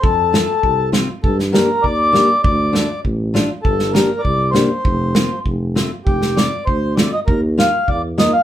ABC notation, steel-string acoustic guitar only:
X:1
M:2/4
L:1/8
Q:1/4=99
K:Fmix
V:1 name="Steel-string acoustic guitar"
z [A,CF] z [A,CF] | z [B,DG] z [B,DG] | z [A,DF] z [A,DF] | z [B,DG] z [B,DG] |
z [B,CF] z [A,CF] | z [A,CF] z [A,CF] | z [B,EF] z [B,EF] |]